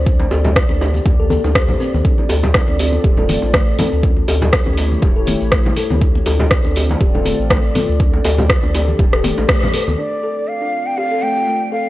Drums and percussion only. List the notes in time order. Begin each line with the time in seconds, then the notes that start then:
0.06 kick, shaker
0.20 low bongo, muted conga
0.31 high bongo, shaker
0.45 high bongo, low bongo, muted conga, low conga, shaker
0.56 kick, cross-stick, shaker
0.69 muted conga
0.81 high bongo, low bongo, shaker
0.94 muted conga, high conga, shaker
1.06 kick, low bongo, low conga, shaker
1.30 muted conga, high conga, shaker
1.44 low bongo, shaker
1.55 kick, cross-stick, muted conga, shaker
1.69 low bongo, high conga, low conga
1.80 muted conga, shaker
1.94 high conga, shaker
2.05 kick, shaker
2.18 low bongo, muted conga
2.29 open hi-hat, high bongo, shaker
2.43 high bongo, muted conga, low conga, shaker
2.54 kick, cross-stick, low bongo, shaker
2.68 muted conga
2.79 open hi-hat, high bongo, low bongo, shaker
2.92 muted conga, high conga, shaker
3.04 kick, shaker
3.17 low bongo, low conga
3.29 open hi-hat, muted conga, high conga, shaker
3.42 low bongo, shaker
3.54 kick, cross-stick, muted conga, high conga, shaker
3.79 open hi-hat, low bongo, muted conga, high conga, low conga, shaker
3.93 shaker
4.03 kick, low bongo, shaker
4.17 muted conga
4.28 open hi-hat, high bongo, shaker
4.42 high bongo, low bongo, muted conga, low conga, shaker
4.53 kick, cross-stick, shaker
4.66 low bongo, muted conga
4.77 open hi-hat, high bongo, shaker
4.92 muted conga, high conga, shaker
5.02 kick, low bongo, low conga, shaker
5.27 open hi-hat, low bongo, muted conga, high conga, shaker
5.41 shaker
5.52 kick, cross-stick, muted conga, shaker
5.65 low bongo, high conga, low conga
5.77 open hi-hat, muted conga, shaker
5.90 low bongo, high conga, shaker
6.01 kick, shaker
6.15 muted conga
6.26 open hi-hat, high bongo, low bongo, shaker
6.39 high bongo, muted conga, low conga, shaker
6.51 kick, cross-stick, low bongo, shaker
6.65 muted conga
6.76 open hi-hat, high bongo, shaker
6.89 low bongo, muted conga, high conga, shaker
7.01 kick, shaker
7.15 low bongo, low conga
7.25 open hi-hat, muted conga, high conga, shaker
7.39 shaker
7.50 kick, cross-stick, low bongo, muted conga, high conga, shaker
7.75 open hi-hat, low bongo, muted conga, high conga, low conga, shaker
7.89 shaker
8.00 kick, shaker
8.13 low bongo, muted conga
8.24 open hi-hat, high bongo, shaker
8.38 high bongo, low bongo, muted conga, low conga, shaker
8.49 kick, cross-stick, shaker
8.64 muted conga
8.74 open hi-hat, high bongo, low bongo, shaker
8.88 muted conga, high conga, shaker
8.99 kick, low bongo, low conga, shaker
9.13 cross-stick
9.24 open hi-hat, muted conga, high conga, shaker
9.38 low bongo, shaker
9.49 kick, cross-stick, muted conga, shaker
9.63 low bongo, high conga, low conga
9.73 open hi-hat, muted conga, shaker
9.87 high conga, shaker